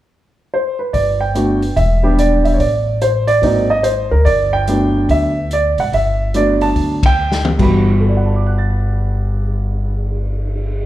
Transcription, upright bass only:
0.94 1.73 G1 medium
1.77 2.56 E1 medium
2.60 3.39 A1 medium
3.42 4.07 G#1 medium
4.12 4.25 D2 medium
4.26 5.05 G1 medium
5.09 5.74 D2 medium
5.78 5.91 G#1 medium
5.92 6.72 G1 medium
6.76 7.55 D2 medium
7.59 10.86 G1 medium

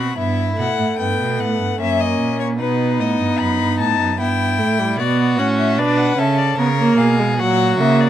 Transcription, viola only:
0.00 0.18 C4 medium
0.18 0.56 B3 medium
0.59 1.81 A3 medium
1.80 2.59 A#3 medium
2.60 4.16 B3 medium
4.20 4.60 B3 medium
4.59 4.80 A3 medium
4.78 5.00 G3 medium
4.99 5.40 B3 medium
5.38 5.80 C#4 medium
5.78 6.17 D4 medium
6.18 6.57 C#4 medium
6.59 6.67 B3 medium
6.79 7.21 A#3 medium
7.19 7.39 G#3 medium
7.40 7.81 F#3 medium
7.80 8.10 A#3 medium

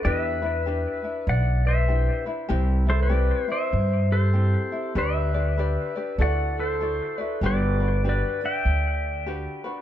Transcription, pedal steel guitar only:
0.05 1.24 B4 medium
0.05 1.29 E5 medium
1.29 1.64 D5 medium
1.29 1.66 F#5 medium
1.67 2.24 C5 medium
1.67 2.23 E5 medium
2.90 3.00 A4 medium
2.90 3.01 C5 medium
3.02 3.47 B4 medium
3.02 3.52 D5 medium
3.52 4.08 C5 medium
3.52 4.14 E5 medium
4.12 4.93 A4 medium
4.12 4.98 C5 medium
4.98 6.16 B4 medium
4.98 6.22 E5 medium
6.21 6.55 D5 medium
6.21 6.59 F#5 loud
6.60 7.40 A4 medium
6.60 7.19 C5 medium
7.19 7.46 B4 medium
7.46 8.01 B4 medium
7.46 8.07 D5 loud
8.09 8.42 B4 medium
8.09 8.45 D5 medium
8.45 9.25 E5 medium
8.45 9.25 G5 medium

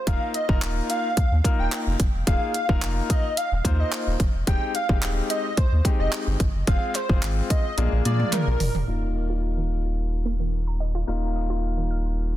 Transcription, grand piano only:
0.07 0.32 A#3 medium
0.07 0.32 D#4 medium
0.07 0.32 F4 medium
0.07 0.32 A#4 medium
0.49 1.06 A#3 medium
0.49 1.06 D#4 medium
0.49 1.06 F4 medium
0.49 1.06 A#4 medium
1.44 1.94 A#3 medium
1.44 1.94 D#4 medium
1.44 1.94 F4 medium
1.44 1.94 A#4 medium
2.27 2.52 A#3 medium
2.27 2.52 D#4 medium
2.27 2.52 F4 medium
2.27 2.52 G#4 medium
2.69 3.26 A#3 medium
2.69 3.26 D#4 medium
2.69 3.26 F4 medium
2.69 3.27 A#4 medium
3.65 4.14 A#3 medium
3.65 4.14 D#4 medium
3.65 4.14 F4 medium
3.65 4.14 C5 medium
4.47 4.72 G#3 medium
4.47 4.72 C4 medium
4.47 4.72 D#4 medium
4.47 4.72 G4 medium
4.89 5.46 G#3 medium
4.89 5.47 C4 medium
4.89 5.47 D#4 medium
4.89 5.47 G4 medium
5.85 6.34 G#3 medium
5.85 6.34 C4 medium
5.85 6.34 D#4 medium
5.85 6.34 G4 medium
6.67 6.92 G#3 medium
6.67 6.92 C4 medium
6.67 6.92 F4 medium
6.67 6.92 G#4 medium
7.09 7.67 G#3 medium
7.09 7.67 C4 medium
7.09 7.67 F4 medium
7.09 7.67 G#4 medium
7.77 8.00 A#3 medium
7.77 8.00 D4 medium
7.77 8.00 F4 medium
7.77 8.00 G#4 medium
8.05 8.55 A#3 medium
8.05 8.55 D4 medium
8.05 8.55 F4 medium
8.05 8.55 G#4 medium
8.87 11.04 A#3 medium
8.87 11.04 D#4 medium
8.87 11.04 F4 medium
11.07 12.37 A#3 medium
11.07 12.37 D#4 medium
11.07 12.37 F4 medium

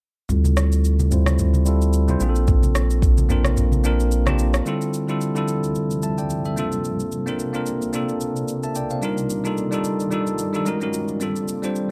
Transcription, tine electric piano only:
0.29 0.96 G3 medium
0.29 0.96 C4 medium
0.29 0.97 E4 medium
0.29 0.97 F4 medium
0.29 0.97 A4 medium
1.11 1.56 G3 medium
1.11 1.56 C4 medium
1.11 1.57 E4 medium
1.11 1.57 F4 medium
1.11 1.57 C5 medium
1.65 1.99 G3 medium
1.65 1.99 C4 medium
1.65 2.00 E4 medium
1.65 2.00 F4 medium
1.65 2.00 A4 medium
2.08 2.20 G3 medium
2.08 2.19 C4 medium
2.08 2.21 E4 medium
2.08 2.21 F4 medium
2.08 2.22 C5 medium
2.20 3.08 A#3 medium
2.20 3.08 C4 medium
2.20 3.09 D4 medium
2.20 3.09 F4 medium
2.20 2.29 G#4 medium
2.29 3.13 A4 medium
3.29 3.74 A#3 medium
3.29 3.74 C4 medium
3.29 3.75 D4 medium
3.29 3.75 F4 medium
3.29 3.75 A#4 medium
3.84 4.17 A#3 medium
3.84 4.18 C4 medium
3.84 4.18 D4 medium
3.84 4.18 F4 medium
3.84 4.19 A#4 medium
4.26 4.58 A#3 medium
4.26 4.59 C4 medium
4.26 4.59 D4 medium
4.26 4.59 F4 medium
4.26 4.60 G4 medium
4.65 4.99 D3 medium
4.65 4.99 G3 medium
4.65 5.00 C4 medium
4.65 5.00 E4 medium
4.65 5.00 F4 medium
4.65 5.01 A4 medium
5.08 5.29 D3 medium
5.08 5.30 G3 medium
5.08 5.30 C4 medium
5.08 5.30 E4 medium
5.08 5.30 F4 medium
5.08 5.31 A4 medium
5.35 5.67 D3 medium
5.35 5.68 G3 medium
5.35 5.68 C4 medium
5.35 5.68 E4 medium
5.35 5.68 F4 medium
5.35 5.69 A4 medium
6.03 6.17 E5 medium
6.03 6.17 A5 medium
6.18 6.44 D5 medium
6.18 6.44 G5 medium
6.46 6.58 A4 medium
6.46 6.71 E5 medium
6.56 7.11 A#3 medium
6.56 7.12 C4 medium
6.56 7.12 D4 medium
6.56 7.12 F4 medium
6.56 7.13 A4 medium
7.26 7.47 A#3 medium
7.26 7.48 C4 medium
7.26 7.48 D4 medium
7.26 7.49 F4 medium
7.26 7.49 A#4 medium
7.53 7.86 A#3 medium
7.53 7.86 C4 medium
7.53 7.86 D4 medium
7.53 7.87 F4 medium
7.53 7.87 A#4 medium
7.93 8.26 A#3 medium
7.93 8.27 C4 medium
7.93 8.27 D4 medium
7.93 8.27 F4 medium
7.93 8.28 A4 medium
8.64 8.75 E5 medium
8.64 8.75 A5 medium
8.76 8.90 D5 medium
8.76 8.90 G5 medium
8.91 9.17 C5 medium
8.91 9.16 F5 medium
9.02 9.35 G3 medium
9.02 9.36 D4 medium
9.02 9.36 D#4 medium
9.02 9.36 F4 medium
9.02 9.37 A#4 medium
9.44 9.65 G3 medium
9.44 9.66 D4 medium
9.44 9.66 D#4 medium
9.44 9.67 F4 medium
9.44 9.67 A4 medium
9.71 10.04 G3 medium
9.71 10.04 D4 medium
9.71 10.04 D#4 medium
9.71 10.05 F4 medium
9.71 10.05 A4 medium
10.11 10.44 G3 medium
10.11 10.45 D4 medium
10.11 10.45 D#4 medium
10.11 10.46 F4 medium
10.11 10.46 A4 medium
10.53 10.66 G3 medium
10.53 10.66 D4 medium
10.53 10.66 D#4 medium
10.53 10.67 F4 medium
10.53 10.67 A4 medium
10.65 10.78 G#3 medium
10.65 10.78 C#4 medium
10.65 10.78 D#4 medium
10.65 10.79 F#4 medium
10.65 10.79 A#4 loud
10.80 11.13 G#3 medium
10.80 11.13 C#4 medium
10.80 11.14 D#4 medium
10.80 11.14 F#4 medium
10.80 11.14 A#4 medium
11.20 11.54 G3 medium
11.20 11.54 C4 medium
11.20 11.54 D4 medium
11.20 11.55 F4 medium
11.20 11.55 A4 medium
11.62 11.84 G3 medium
11.62 11.84 C4 medium
11.62 11.84 D4 medium
11.62 11.85 F4 medium
11.62 11.85 C5 medium

